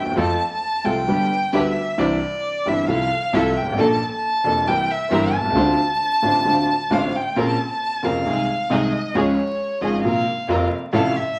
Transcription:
Already playing: G5
0.00 D2
0.05 D#2
0.11 E2
0.16 F2 F3 A3 C4 F4 A4 A5
0.52 A5
0.84 C2 C3 F3 A3 C4 F4 A4 G5
1.07 G1 G2 D3 G3 B3 D4 G4 B4
1.53 D2 D3 G3 B3 D4 G4 B4 E5
1.98 C2 C3 E3 C4 D4 E4 G4 C5 D5
2.66 G1 G2 E3 C4 D4 E4 G4 C5 E5
2.88 C2 C3 F3 C4 E4 F4 A4 F5
3.33 C2 C3 F3 C4 E4 F4 A4 E5
3.57 G5
3.61 G1
3.66 G#1
3.72 A1
3.77 A#1 A#2 F3 A#3 D4 A4 A5
4.12 A5
4.44 F1 F2 F3 A#3 D4 A4
4.66 C2 C3 E3 A#3 C4 E4 G4 A#4 G5
4.91 E5
5.11 G1 G2 E3 A#3 C4 E4 G4 A#4
5.34 A5
5.39 B1
5.44 C2
5.50 C#2
5.55 D2 D3 A3 C4 D4 F4 C5
6.22 A1 A2 D3 A3 C4 D4 F4 C5
6.45 D2 D3 A3 C4 D4 F4 C5
6.90 A1 A2 D3 A3 C4 D4 F4 C5 F5
7.16 G5
7.36 A#1 A#2 C#3 A#3 C4 C#4 F4 A#4 A5
7.72 A5
8.03 F1 F2 C#3 A#3 C4 C#4 F4 A#4 F5
8.25 C2 C3 D#3 G#3 C4 D#4 G#4
8.70 C2 C3 D#3 G#3 C4 D#4 G#4 D#5
9.15 C#2 C#3 F3 G#3 C#4 F4 G#4 C#5
9.81 G#1 G#2 C#3 F3 G#3 C#4 F4 G#4 D#5
10.04 A#1 A#2 C3 F3 A#3 C4 F4 A#4 F5
10.48 F1 F2 C3 F3 A#3 C4 F4 A#4
10.93 A1 A2 C3 F3 A3 E4 F4 A4 F5
11.16 E5

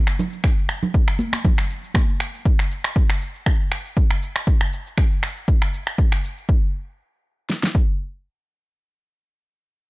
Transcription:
0.07 finger snap, shaker
0.19 low conga, shaker
0.33 shaker
0.44 finger snap, kick, shaker
0.58 shaker
0.69 finger snap, shaker
0.83 low conga, shaker
0.94 kick, shaker
1.08 finger snap, shaker
1.19 high conga, shaker
1.33 finger snap, high conga, shaker
1.44 kick, low conga, shaker
1.58 finger snap, shaker
1.70 shaker
1.84 shaker
1.94 finger snap, kick, high conga, shaker
2.09 shaker
2.20 finger snap, shaker
2.35 shaker
2.46 kick, shaker
2.59 finger snap, shaker
2.71 shaker
2.84 finger snap, shaker
2.96 kick, shaker
3.10 finger snap, shaker
3.22 shaker
3.35 shaker
3.46 finger snap, kick, shaker
3.61 shaker
3.72 finger snap, shaker
3.86 shaker
3.97 kick, shaker
4.11 finger snap, shaker
4.23 shaker
4.36 finger snap, shaker
4.47 kick, shaker
4.61 finger snap, shaker
4.73 shaker
4.87 shaker
4.98 finger snap, kick, shaker
5.12 shaker
5.23 finger snap, shaker
5.37 shaker
5.48 kick, shaker
5.62 finger snap, shaker
5.74 shaker
5.87 finger snap, shaker
5.98 kick, shaker
6.12 finger snap, shaker
6.24 shaker
6.38 shaker
6.49 kick
7.50 snare
7.63 snare
7.75 kick

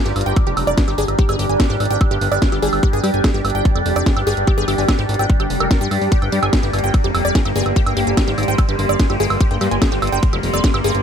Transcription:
Already playing: G3 D4 G4 D5 A#5
0.06 G1 G4, closed hi-hat
0.16 G1, open hi-hat, high woodblock
0.21 closed hi-hat
0.26 G1 G5, closed hi-hat
0.36 kick, closed hi-hat, high woodblock
0.47 F1 G4, closed hi-hat
0.57 F1 G5, open hi-hat, high woodblock
0.67 F1 D5, closed hi-hat
0.78 G#4, kick, snare, closed hi-hat
0.88 G1 G4, closed hi-hat, high woodblock
0.98 G1 G#4, open hi-hat
1.08 G1, closed hi-hat, high woodblock
1.19 G4, kick, closed hi-hat
1.29 G1 G#4, closed hi-hat, high woodblock
1.39 G1 G4, open hi-hat
1.49 G1 G#5, closed hi-hat
1.60 G#4, kick, snare, closed hi-hat, high woodblock
1.70 G#1 G4, closed hi-hat
1.80 G#1, open hi-hat, high woodblock
1.85 closed hi-hat
1.90 G#1 G5, closed hi-hat
2.01 kick, closed hi-hat, high woodblock
2.11 G1 G4, closed hi-hat
2.21 G1, open hi-hat
2.32 G1 D5, closed hi-hat, high woodblock
2.42 G#4, kick, snare, closed hi-hat
2.52 G1 G4, closed hi-hat, high woodblock
2.62 G1 G#4, open hi-hat
2.73 G1, open hi-hat, high woodblock
2.83 G4, kick, closed hi-hat
2.93 G1 G#4, closed hi-hat
3.04 G2 G4, open hi-hat, high woodblock
3.14 G1 G#5, closed hi-hat
3.24 G#4, kick, snare, closed hi-hat, high woodblock
3.34 G1 G4, closed hi-hat
3.45 G1, open hi-hat, high woodblock
3.50 closed hi-hat
3.55 G1 G5, closed hi-hat
3.65 kick, closed hi-hat
3.75 F1 G4, closed hi-hat, high woodblock
3.86 F1, open hi-hat
3.96 F1 D5, closed hi-hat, high woodblock
4.06 G#4, kick, snare, closed hi-hat
4.17 G1 G4, closed hi-hat, high woodblock
4.27 G1 G#4, open hi-hat
4.37 G1, closed hi-hat
4.47 G4, kick, closed hi-hat, high woodblock
4.58 G1 G#4, closed hi-hat
4.68 G1 G4, open hi-hat, high woodblock
4.78 G1 G#5, open hi-hat
4.88 G#4, kick, snare, closed hi-hat, high woodblock
4.99 G#1 G4, closed hi-hat
5.09 G#1, open hi-hat
5.14 closed hi-hat
5.19 G#1 G5, closed hi-hat, high woodblock
5.30 kick, closed hi-hat
5.40 G1 G4, closed hi-hat, high woodblock
5.50 F1, open hi-hat
5.60 F1 A#4, closed hi-hat, high woodblock
5.71 A#4, kick, snare, closed hi-hat
5.81 G2 G4, closed hi-hat
5.91 G2, open hi-hat, high woodblock
6.02 G2, open hi-hat
6.12 A#3 G4, kick, closed hi-hat, ride
6.22 G1 G5, closed hi-hat, high woodblock
6.32 G2 G4, open hi-hat
6.43 G1 G#5, closed hi-hat, high woodblock
6.53 G#4, kick, snare, closed hi-hat, ride
6.63 G1 G4, closed hi-hat
6.73 G1, open hi-hat, high woodblock
6.79 closed hi-hat
6.84 G1 G5, closed hi-hat
6.94 kick, closed hi-hat, ride, high woodblock
7.04 F1 G4, closed hi-hat
7.15 F1 C6, open hi-hat, high woodblock
7.25 F1 D5, closed hi-hat
7.35 G#4, kick, snare, closed hi-hat, ride
7.45 G1 G4, closed hi-hat, high woodblock
7.56 G1 G#4, open hi-hat
7.66 G1, closed hi-hat, high woodblock
7.76 G4, kick, closed hi-hat, ride
7.86 G1 G5, closed hi-hat, high woodblock
7.97 G1 G4, open hi-hat
8.07 G1 G#5, closed hi-hat
8.17 G#4, kick, snare, closed hi-hat, ride, high woodblock
8.28 G#1 G4, closed hi-hat
8.38 G#1, open hi-hat, high woodblock
8.43 closed hi-hat
8.48 G#1 G5, closed hi-hat
8.58 kick, closed hi-hat, ride, high woodblock
8.69 G1 G4, closed hi-hat
8.79 G1, open hi-hat
8.89 G1 D5, closed hi-hat, high woodblock
8.99 G#4, kick, snare, closed hi-hat, ride
9.10 G1 G4, closed hi-hat, high woodblock
9.20 G1 G#4, open hi-hat
9.30 G1, open hi-hat, high woodblock
9.41 G4, kick, closed hi-hat, ride
9.51 G1 G5, closed hi-hat
9.61 G2 G4, open hi-hat, high woodblock
9.71 G1 G#5, closed hi-hat
9.82 G#4, kick, snare, closed hi-hat, ride, high woodblock
9.92 G1 G4, closed hi-hat
10.02 G1, open hi-hat, high woodblock
10.07 closed hi-hat
10.12 G1 G5, closed hi-hat
10.23 kick, closed hi-hat, ride
10.33 F1 G4, closed hi-hat, high woodblock
10.43 F1, open hi-hat
10.54 F1 D5, closed hi-hat, high woodblock
10.64 G#4, kick, snare, closed hi-hat, ride
10.74 G1 G4, closed hi-hat, high woodblock
10.84 G1 G#4, open hi-hat
10.95 G1, closed hi-hat

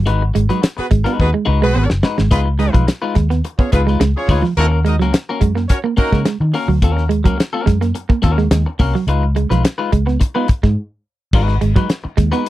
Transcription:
0.06 G#1 G#3 D#4 F#4 B4, closed hi-hat
0.22 muted clean electric guitar stroke
0.34 G#1 G#3, muted clean electric guitar stroke, closed hi-hat
0.49 F#3 G#3 D#4 F#4 B4, closed hi-hat
0.62 muted clean electric guitar stroke, snare, closed hi-hat
0.77 B3 F#4 G#4 B4, muted clean electric guitar stroke, muted fingered electric bass stroke
0.91 G#1 G#3, kick, closed hi-hat
1.04 G#3 B3 D#4 F#4 B4, snare, closed hi-hat
1.20 D#2 B3 F#4 G#4 B4, kick
1.33 G#3, muted clean electric guitar stroke
1.45 C#2 G#3 D#4 F#4 B4, muted clean electric guitar stroke
1.62 B1 G#3 B3 F#4 G#4 B4, muted clean electric guitar stroke
1.74 G#1 B3, muted clean electric guitar stroke
1.90 F#1, snare
2.03 G#3 D#4 F#4 B4, muted clean electric guitar stroke, snare
2.18 G#1 G#3, snare
2.30 C#2 G#3 B3 D#4 F4 G#4 B4, kick, closed hi-hat
2.46 muted clean electric guitar stroke
2.58 G#3 D#4 G#4 B4 D#5, muted clean electric guitar stroke, closed hi-hat
2.73 B1 F3 G#3 D#4 F4 B4, kick, closed hi-hat
2.87 muted clean electric guitar stroke, snare, closed hi-hat
3.02 G#3 D#4 F4 B4
3.15 D#2 G#3, kick, snare, closed hi-hat
3.30 B3, muted clean electric guitar stroke, snare, closed hi-hat
3.45 muted clean electric guitar stroke, closed hi-hat
3.58 B3 C#4 F4 G#4 C#5, muted clean electric guitar stroke, kick
3.71 C#2 G#3 B3 D#4 F4 G#4 B4, muted clean electric guitar stroke, kick, closed hi-hat
3.87 G#3 D#4 F4 B4, snare
4.00 C#2 G#3, muted clean electric guitar stroke, snare, closed hi-hat
4.16 C#4 F4 G#4 C#5, muted clean electric guitar stroke
4.28 D2 G#3 D#4 F4 B4, muted clean electric guitar stroke, kick, open hi-hat
4.42 F3, muted clean electric guitar stroke, snare
4.56 D#2 A#3 C#4 D#4 F#4 A#4, closed hi-hat
4.60 A#4
4.72 muted clean electric guitar stroke
4.85 G#3 D#4 F#4 A#4 D#5, muted clean electric guitar stroke, closed hi-hat
4.99 C#2 F#3 A#3 C#4 F#4 A#4, snare
5.14 muted clean electric guitar stroke, snare, closed hi-hat
5.29 A#3 C#4 F#4 A#4
5.41 F#2 G#3, muted clean electric guitar stroke, kick, closed hi-hat
5.55 A#3, muted clean electric guitar stroke, snare
5.69 C#4 F#4 A#4 C#5, muted clean electric guitar stroke, kick, closed hi-hat
5.84 A#3, muted clean electric guitar stroke
5.97 A#3 C#4 D#4 F#4 A#4, muted clean electric guitar stroke, muted fingered electric bass stroke, kick, closed hi-hat
6.12 C#3 G#3 A#3 C#4 F#4 A#4, kick, snare
6.25 G#3, muted clean electric guitar stroke, snare, closed hi-hat
6.40 D#3, muted clean electric guitar stroke
6.53 A#3 C#4 F#4 A#4, muted clean electric guitar stroke, snare, open hi-hat
6.68 D2 F#3, muted clean electric guitar stroke
6.82 D#2 A#3 C#4 F#4 A#4, kick, closed hi-hat
6.97 muted clean electric guitar stroke, snare
7.09 G#3, muted clean electric guitar stroke, closed hi-hat
7.24 C#2 F#3 A#3 C#4 F#4 A#4, kick, closed hi-hat
7.38 muted clean electric guitar stroke, snare, closed hi-hat
7.53 A#3 C#4 F#4 A#4
7.66 F#2 G#3, muted clean electric guitar stroke, kick, snare, closed hi-hat
7.81 A#3, muted clean electric guitar stroke, snare, closed hi-hat
7.95 muted clean electric guitar stroke, closed hi-hat
8.09 A#3, muted clean electric guitar stroke, kick
8.22 D#2 A#3 C#4 F#4 A#4, muted clean electric guitar stroke, kick, closed hi-hat
8.38 G#3, muted clean electric guitar stroke, snare
8.51 D#2 G#3, muted clean electric guitar stroke, snare, closed hi-hat
8.66 muted clean electric guitar stroke
8.79 C2 A#3 C#4 F#4 A#4, muted clean electric guitar stroke, kick, open hi-hat
8.95 F#3, muted clean electric guitar stroke, snare
9.07 C#2 G#3 D#4 F4 B4, closed hi-hat
9.23 muted clean electric guitar stroke
9.35 G#3, muted clean electric guitar stroke, closed hi-hat
9.50 B1 F3 G#3 D#4 F4 B4, snare, closed hi-hat
9.63 muted clean electric guitar stroke, snare, closed hi-hat
9.78 G#3 D#4 F4 B4
9.91 C#2 G#3, muted clean electric guitar stroke, kick, closed hi-hat
10.06 B3, muted clean electric guitar stroke, snare
10.20 muted clean electric guitar stroke, kick, closed hi-hat
10.35 G#3 B3 D#4 F4 B4
10.48 muted clean electric guitar stroke, muted fingered electric bass stroke, kick, closed hi-hat
10.63 G#2 G#3, muted clean electric guitar stroke, kick, snare
11.33 G#1 G#3 D#4 F#4 B4, kick, crash
11.48 muted clean electric guitar stroke, snare
11.61 G#1 G#3, muted clean electric guitar stroke, closed hi-hat
11.76 F#3 G#3 D#4 F#4 B4, kick, closed hi-hat
11.89 muted clean electric guitar stroke, snare, closed hi-hat
12.04 muted clean electric guitar stroke, muted fingered electric bass stroke
12.17 D#2 G#3, kick, snare, closed hi-hat
12.32 G#3 B3 D#4 F#4 B4, snare, closed hi-hat

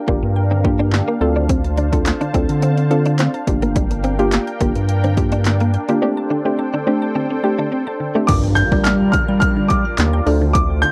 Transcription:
Already playing: D4 A#4 F5 G5
0.07 G1 D3 A#3 D4 F4 G4, kick
0.23 G2 A#3
0.36 G5
0.51 D3 C4
0.64 A#3 D4 F4 G4, muted clean electric guitar stroke, kick
0.79 D4 G5
0.93 D3, snare, clap
1.08 A#3
1.21 D2 C4 D4 F4 A4 C5 A5, muted clean electric guitar stroke
1.36 D3 D4
1.49 C4, kick, closed hi-hat
1.64 A5, closed hi-hat
1.77 D3 D4, closed hi-hat
1.92 C4 D4 F4 A4, muted clean electric guitar stroke, kick, closed hi-hat
2.06 A5, muted clean electric guitar stroke, snare, clap, closed hi-hat
2.21 D3 D4, closed hi-hat
2.34 D2 C4 D4 F4 A4, kick, closed hi-hat
2.49 D3 A5, closed hi-hat
2.62 D3 C4, closed hi-hat
2.77 C4, muted clean electric guitar stroke, closed hi-hat
2.90 C4 D4 F4 A4 A5, closed hi-hat
3.06 D3 D4, closed hi-hat
3.19 C4, snare, clap, closed hi-hat
3.34 A5, muted clean electric guitar stroke, closed hi-hat
3.47 G1 D3 A#3 D4 F4 G4 A#4 G5, kick, closed hi-hat
3.62 A#3, closed hi-hat
3.76 D3 G3, kick, closed hi-hat
3.91 A#3, muted clean electric guitar stroke, closed hi-hat
4.04 C4 G5, closed hi-hat
4.19 A#3 D4 F4 G4, closed hi-hat
4.32 A#3, snare, clap, closed hi-hat
4.47 G5, closed hi-hat
4.60 G1 D3 A#3 D4 F4 G4, kick, closed hi-hat
4.75 G2 A#3, closed hi-hat
4.89 G5, closed hi-hat
5.04 D3 C4, closed hi-hat
5.17 A#3 D4 F4 G4, muted clean electric guitar stroke, kick, closed hi-hat
5.32 D4 G5, closed hi-hat
5.45 D3, snare, clap, closed hi-hat
5.60 A#3, closed hi-hat
5.74 G5, muted clean electric guitar stroke, closed hi-hat
5.89 D3 A#3 D4 F4 G4, closed hi-hat
6.02 A3 C4 D4 G4 A4 C5 G5
6.17 A5
6.30 D3 D4
6.45 A3 C4 D4 G4, muted clean electric guitar stroke
6.59 A5, muted clean electric guitar stroke
6.74 D3 D4
6.87 A3 C4 D4 G4
7.02 A5
7.15 D3 C4
7.30 C4, muted clean electric guitar stroke
7.43 A3 C4 D4 G4 A5
7.59 D3 D4
7.72 C4
7.87 A5, muted clean electric guitar stroke
8.00 D3
8.15 A3 C4 D4 G4
8.27 G2 D3 G3 D4 F4 G4 A#4 D5 D6, kick, closed hi-hat, crash, impact
8.44 G5
8.55 F6 G6, closed hi-hat
8.71 D3 G3 D4 F4 G4 A#4 D5, kick
8.84 G5 F6, snare, clap, closed hi-hat
9.12 D3 F6, kick, closed hi-hat
9.28 G3 G5
9.40 F6, kick, closed hi-hat
9.57 D3
9.68 G5 D6, kick, closed hi-hat
9.85 F6
9.98 D#2 D3, snare, clap, closed hi-hat
10.13 G5
10.26 D2 D3 A3 C4 D4 F4 A4 C5 D5 F6, open hi-hat
10.42 D3
10.53 A5 D6, kick, closed hi-hat
10.82 D3 G6, closed hi-hat

